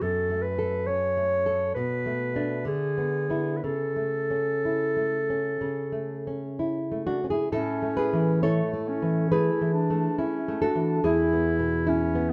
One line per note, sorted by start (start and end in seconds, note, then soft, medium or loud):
0.02 1.72 F#2 medium
0.02 0.43 A4 medium
0.30 0.76 A3 medium
0.42 0.88 B4 medium
0.59 1.05 A4 medium
0.87 1.35 C#4 medium
0.87 1.74 C#5 medium
1.17 1.64 A3 medium
1.46 1.76 A4 medium
1.75 2.64 B2 medium
1.75 2.64 B4 medium
2.06 2.34 A3 medium
2.36 2.63 A3 medium
2.36 2.63 D4 medium
2.65 3.59 D3 medium
2.65 3.58 G#4 medium
2.98 3.29 B3 soft
3.30 3.60 B3 soft
3.30 3.60 E4 medium
3.57 3.65 B4 soft
3.64 5.58 C#3 medium
3.64 6.59 A4 medium
3.96 4.50 A3 soft
4.31 4.84 C#4 soft
4.65 5.17 E4 soft
4.97 5.48 A3 soft
5.30 5.81 C#4 soft
5.61 7.50 C#3 medium
5.92 6.45 A3 medium
6.27 6.79 C#4 soft
6.59 7.06 E4 soft
6.92 7.42 A3 soft
7.07 7.24 D4 medium
7.07 7.30 F#4 medium
7.24 7.31 C#4 medium
7.30 7.52 E4 medium
7.30 7.52 G#4 medium
7.52 9.27 A2 medium
7.52 8.45 C#4 medium
7.52 7.95 E4 medium
7.52 7.96 A4 medium
7.82 8.31 A3 medium
7.97 8.40 G#4 medium
7.97 8.40 B4 loud
8.13 8.61 E3 medium
8.43 8.90 A3 medium
8.43 8.90 E4 medium
8.43 9.28 A4 medium
8.43 9.28 C#5 loud
8.73 9.20 A3 medium
8.89 9.34 C#4 medium
9.02 9.49 E3 medium
9.32 9.78 A3 medium
9.32 9.73 E4 medium
9.32 10.58 G#4 medium
9.32 10.58 B4 loud
9.61 10.07 E3 medium
9.73 10.20 D4 medium
9.90 10.36 A3 medium
10.18 10.63 C#4 medium
10.18 10.65 E4 medium
10.48 10.94 A3 medium
10.61 11.07 D4 medium
10.61 11.02 F#4 medium
10.61 11.03 A4 loud
10.75 11.03 E3 medium
11.04 12.33 E2 medium
11.04 11.86 E4 medium
11.04 11.90 E4 medium
11.04 12.33 G#4 medium
11.33 11.77 B3 medium
11.59 12.04 B2 medium
11.87 12.31 C#4 medium
11.87 12.31 E4 medium
12.15 12.33 B3 medium